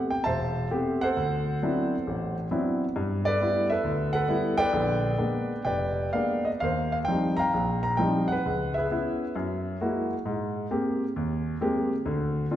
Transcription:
0.00 0.11 A3 soft
0.00 0.11 B3 soft
0.00 0.12 C4 soft
0.00 0.12 G4 medium
0.10 0.24 G5 medium
0.24 0.65 E1 medium
0.24 1.02 C5 medium
0.24 1.13 E5 medium
0.24 0.67 A5 medium
0.71 1.03 A3 medium
0.71 1.03 B3 soft
0.71 1.03 C4 soft
0.71 1.03 G4 medium
1.01 2.35 A4 medium
1.01 2.34 C5 medium
1.01 2.34 F#5 loud
1.17 1.56 D2 medium
1.63 1.94 F#3 medium
1.63 1.95 B3 soft
1.63 1.95 C4 medium
1.63 1.94 D4 soft
1.63 1.95 E4 medium
2.07 2.46 A1 medium
2.51 2.83 F#3 medium
2.51 2.83 B3 medium
2.51 2.83 C4 medium
2.51 2.84 D4 medium
2.51 2.83 E4 medium
2.96 3.35 G2 medium
3.25 3.70 A4 medium
3.25 3.70 B4 medium
3.25 3.67 D5 loud
3.41 3.72 G3 medium
3.41 3.72 A3 soft
3.41 3.73 B3 soft
3.41 3.72 E4 medium
3.70 4.13 A4 medium
3.70 4.14 B4 medium
3.70 4.11 E5 medium
3.84 4.23 D2 medium
4.13 4.70 A4 medium
4.13 4.58 B4 medium
4.13 4.60 F#5 medium
4.28 4.60 G3 medium
4.28 4.60 A3 soft
4.28 4.60 B3 medium
4.28 4.61 E4 medium
4.58 5.62 B4 medium
4.58 5.62 D5 medium
4.58 5.61 G5 loud
4.73 5.13 A#1 medium
4.73 5.13 D3 medium
5.17 5.51 G#3 soft
5.17 5.51 A#3 soft
5.17 5.52 B3 soft
5.17 5.52 D4 medium
5.64 6.07 F1 medium
5.64 6.58 B4 medium
5.64 6.59 D5 medium
5.64 6.42 G5 medium
6.13 6.48 G#3 soft
6.13 6.48 A#3 soft
6.13 6.48 B3 soft
6.13 6.49 D4 medium
6.13 6.44 F5 medium
6.45 6.50 D#5 medium
6.60 7.03 D#2 medium
6.60 7.52 A#4 medium
6.60 7.52 C5 medium
6.60 6.91 F5 medium
6.92 6.97 F5 medium
7.05 7.41 F3 soft
7.05 7.41 G3 soft
7.05 7.41 C4 soft
7.05 7.36 G5 medium
7.09 7.42 D#4 medium
7.37 8.27 F5 medium
7.37 7.96 G5 medium
7.37 7.81 A#5 medium
7.54 7.94 A#1 medium
7.83 7.98 A#5 medium
7.97 8.32 F3 medium
7.97 8.33 G3 medium
7.97 8.32 C4 soft
7.97 8.32 D#4 medium
7.97 8.27 G5 medium
8.28 8.72 F#5 medium
8.32 8.76 B4 medium
8.46 8.86 C#2 medium
8.74 10.08 G#4 medium
8.74 9.34 B4 medium
8.74 10.07 E5 medium
8.91 9.24 B3 medium
8.91 9.24 C#4 soft
8.91 9.24 E4 medium
9.36 9.75 F#2 medium
9.81 10.13 G#3 medium
9.81 10.13 A#3 medium
9.81 10.13 E4 medium
9.81 10.13 F#4 medium
10.25 10.65 G#2 medium
10.70 11.03 G#3 medium
10.70 11.03 A#3 soft
10.70 11.03 C4 medium
10.70 11.03 G4 medium
11.16 11.55 D#2 medium
11.61 11.92 G#3 medium
11.61 11.92 A#3 medium
11.61 11.92 C4 medium
11.61 11.92 G4 medium
12.05 12.45 D2 medium
12.05 12.45 D3 medium
12.51 12.56 C4 medium
12.51 12.56 D4 medium
12.51 12.56 F4 medium

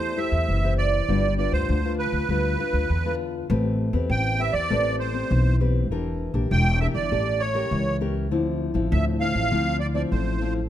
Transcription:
0.00 0.13 E2 medium
0.00 0.45 A3 medium
0.00 0.13 E4 medium
0.00 0.13 G4 medium
0.00 0.13 C5 medium
0.00 0.19 C5 medium
0.17 0.58 E4 medium
0.17 0.58 G4 medium
0.17 0.58 C5 medium
0.17 0.74 E5 medium
0.32 0.45 E2 medium
0.48 1.00 F#1 medium
0.48 1.05 E3 medium
0.64 1.04 E4 medium
0.64 1.04 G4 medium
0.64 1.04 C5 medium
0.78 1.34 D5 medium
1.09 1.47 G1 medium
1.09 1.66 G3 medium
1.09 1.26 D4 medium
1.09 1.27 F4 medium
1.09 1.27 B4 medium
1.38 1.79 D4 medium
1.38 1.79 F4 medium
1.38 1.79 B4 medium
1.38 1.52 D5 medium
1.52 1.66 D2 medium
1.52 1.95 C5 medium
1.69 2.07 D2 medium
1.69 2.26 D3 soft
1.85 2.25 D4 medium
1.85 2.25 F4 medium
1.85 2.25 B4 medium
1.99 3.15 B4 medium
2.12 2.26 D2 medium
2.29 2.55 D2 medium
2.29 2.87 G3 medium
2.29 2.55 D4 medium
2.29 2.55 F4 medium
2.29 2.55 B4 medium
2.59 2.87 D4 medium
2.59 2.87 F4 medium
2.59 2.88 B4 medium
2.73 2.86 D2 medium
2.90 3.41 E2 medium
2.90 3.47 D3 medium
3.05 3.45 D4 medium
3.05 3.46 F4 medium
3.05 3.46 B4 medium
3.50 3.88 A1 loud
3.50 4.07 A3 medium
3.50 3.90 C4 medium
3.50 3.90 G4 medium
3.50 3.90 B4 medium
3.93 4.07 E2 medium
3.93 4.34 C4 medium
3.93 4.34 G4 medium
3.93 4.35 B4 medium
4.10 4.48 A1 loud
4.10 4.67 E3 medium
4.10 4.41 G5 medium
4.39 4.65 C4 medium
4.39 4.65 G4 medium
4.39 4.65 B4 medium
4.39 4.54 E5 medium
4.53 4.67 E2 medium
4.53 4.96 D5 loud
4.70 5.22 A1 medium
4.70 5.28 A3 medium
4.70 5.11 C4 medium
4.70 5.11 G4 medium
4.70 5.11 B4 medium
4.99 5.56 C5 medium
5.14 5.55 C4 medium
5.14 5.55 G4 medium
5.31 5.91 B1 medium
5.31 5.88 E3 medium
5.60 5.86 C4 medium
5.60 5.86 G4 medium
5.60 5.86 B4 medium
5.91 6.29 E1 loud
5.91 6.48 E3 medium
5.91 6.31 D4 medium
5.91 6.31 G4 medium
5.91 6.32 A#4 medium
6.34 6.47 A#1 medium
6.34 6.75 D4 medium
6.34 6.76 G4 medium
6.34 6.76 A#4 medium
6.51 6.89 E1 loud
6.51 7.08 E3 medium
6.51 6.79 G5 loud
6.80 6.99 D4 medium
6.80 6.99 G4 medium
6.80 6.99 A#4 medium
6.80 6.87 E5 loud
6.94 7.08 G1 medium
6.94 7.42 D5 medium
7.11 7.62 A1 medium
7.11 7.68 A3 medium
7.11 7.40 C#4 medium
7.11 7.40 G4 medium
7.11 7.40 A#4 medium
7.40 7.97 C#5 medium
7.54 7.96 C#4 medium
7.54 7.96 G4 medium
7.54 7.96 A#4 medium
7.71 8.32 C#2 medium
7.71 8.29 E3 medium
8.01 8.26 C#4 medium
8.01 8.27 G4 medium
8.01 8.27 A#4 medium
8.31 8.70 D2 loud
8.31 8.89 D3 medium
8.31 8.72 F3 medium
8.31 8.72 C4 medium
8.31 8.72 E4 medium
8.74 8.88 A1 medium
8.74 9.16 F3 medium
8.74 9.16 C4 medium
8.74 9.16 E4 medium
8.91 9.30 D2 loud
8.91 9.49 A2 medium
8.91 9.05 E5 loud
9.20 9.46 F3 medium
9.20 9.46 C4 soft
9.20 9.47 E4 medium
9.20 9.77 F5 loud
9.35 9.48 A1 medium
9.51 10.03 D2 medium
9.51 10.09 D3 medium
9.51 9.80 F3 medium
9.51 9.80 C4 medium
9.51 9.80 E4 medium
9.80 9.87 D5 medium
9.94 10.36 F3 medium
9.94 10.36 C4 medium
9.94 10.36 E4 medium
9.94 10.02 D5 medium
10.12 10.69 A1 medium
10.12 10.69 A2 medium
10.12 10.54 C5 medium
10.41 10.59 F3 medium
10.41 10.59 C4 medium
10.41 10.60 E4 medium

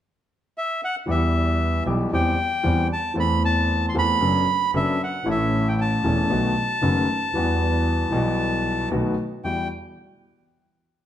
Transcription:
0.58 0.81 E5 medium
0.84 0.96 F#5 medium
1.07 1.82 E2 medium
1.07 1.83 E2 medium
1.07 1.83 E3 medium
1.07 1.82 G3 medium
1.07 1.83 B3 medium
1.07 1.83 G4 medium
1.07 1.84 E5 medium
1.86 2.08 B1 medium
1.86 2.08 B2 medium
1.86 2.08 E3 medium
1.86 2.09 G3 medium
1.86 2.08 B3 medium
1.86 2.09 G4 medium
2.12 2.34 E2 medium
2.12 2.35 E3 medium
2.12 2.35 G3 medium
2.12 2.35 C4 medium
2.12 2.35 G4 medium
2.12 2.88 G5 medium
2.63 2.86 E2 medium
2.63 2.87 E2 medium
2.63 2.86 E3 medium
2.63 2.86 G3 medium
2.63 2.86 C4 medium
2.63 2.86 G4 medium
2.93 3.16 A5 medium
3.14 3.91 E2 medium
3.14 3.91 E3 medium
3.14 3.91 A3 medium
3.14 3.91 C4 medium
3.14 3.92 A4 medium
3.20 3.43 B5 medium
3.45 3.86 A5 medium
3.89 3.96 C6 medium
3.94 4.17 E2 medium
3.94 4.17 E3 medium
3.94 4.17 A3 medium
3.94 4.17 C4 medium
3.94 4.17 A4 medium
3.94 4.71 B5 loud
4.21 4.43 F#1 medium
4.21 4.43 F#2 medium
4.21 4.43 F#3 medium
4.21 4.43 B3 medium
4.21 4.43 D4 medium
4.21 4.43 A4 medium
4.74 4.96 F#1 medium
4.74 4.96 F#2 medium
4.74 4.96 F#3 medium
4.74 4.96 B3 medium
4.74 4.96 D4 medium
4.74 4.96 A4 medium
4.74 5.02 E5 medium
5.03 5.28 F#5 medium
5.24 6.00 A1 medium
5.24 6.00 A2 medium
5.24 6.00 E3 medium
5.24 6.00 A3 medium
5.24 6.01 C#4 medium
5.24 6.02 A4 medium
5.31 5.69 E5 medium
5.68 5.80 G5 medium
5.81 8.89 A5 medium
6.04 6.26 E1 medium
6.04 6.26 E2 medium
6.04 6.26 E3 medium
6.04 6.26 A3 medium
6.04 6.26 C#4 medium
6.04 6.27 A4 medium
6.30 6.52 B1 medium
6.30 6.52 B2 medium
6.30 6.52 D#3 medium
6.30 6.52 A3 medium
6.30 6.52 B3 medium
6.30 6.52 F#4 medium
6.82 7.04 F#1 medium
6.82 7.04 F#2 medium
6.82 7.04 D#3 medium
6.82 7.05 A3 medium
6.82 7.04 B3 medium
6.82 7.04 F#4 medium
7.34 8.09 E2 medium
7.34 8.09 E3 medium
7.34 8.09 G3 soft
7.34 8.09 B3 medium
7.34 8.10 F#4 medium
8.10 8.87 B1 medium
8.10 8.88 B1 medium
8.10 8.87 B2 medium
8.10 8.86 E3 medium
8.10 8.87 G3 soft
8.10 8.88 B3 medium
8.15 8.88 F#4 medium
8.91 9.13 B1 medium
8.91 9.14 B1 medium
8.91 9.14 B2 medium
8.91 9.13 D#3 medium
8.91 9.13 A3 medium
8.91 9.14 B3 medium
8.91 9.14 F#4 medium
9.44 9.66 E2 soft
9.44 9.66 G3 soft
9.44 9.66 E4 soft
9.44 9.66 F#4 soft
9.44 9.68 G5 medium

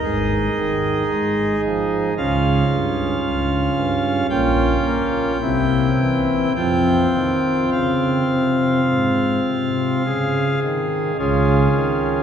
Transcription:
0.00 0.49 G#1 medium
0.00 0.49 G#2 medium
0.00 2.14 D#4 medium
0.00 2.14 G#4 medium
0.00 1.61 D#5 medium
0.58 1.03 D#3 medium
1.10 1.56 G#3 medium
1.65 2.10 F3 medium
2.18 2.63 C#2 medium
2.18 2.63 C#3 medium
2.18 4.27 C#4 medium
2.18 4.27 F4 medium
2.18 4.27 F5 medium
2.71 3.16 G2 medium
3.24 3.69 C#2 medium
3.76 4.22 G2 medium
4.30 4.77 A#1 medium
4.30 4.77 A#2 medium
4.30 5.37 C#4 medium
4.30 5.38 F4 medium
4.30 6.52 G5 loud
4.85 5.33 A#3 medium
5.41 5.90 C2 medium
5.41 5.90 C3 medium
5.41 6.53 C4 medium
5.41 6.53 E4 medium
5.99 6.48 E3 medium
6.56 7.07 F2 medium
6.56 7.06 F3 medium
6.56 10.03 C4 medium
6.56 10.03 F4 medium
6.56 7.70 G5 medium
7.15 7.65 D#3 medium
7.72 8.22 C#3 medium
7.72 10.60 F5 medium
8.30 8.80 C3 medium
8.89 9.40 G#2 medium
9.48 9.98 C3 medium
10.05 10.55 C#3 medium
10.05 11.17 G#4 medium
10.63 11.12 D#3 medium
11.19 11.68 C#2 medium
11.19 11.68 C#3 medium
11.19 12.23 C#4 soft
11.19 12.23 F4 soft
11.19 12.23 G#4 loud
11.76 12.23 D#3 medium

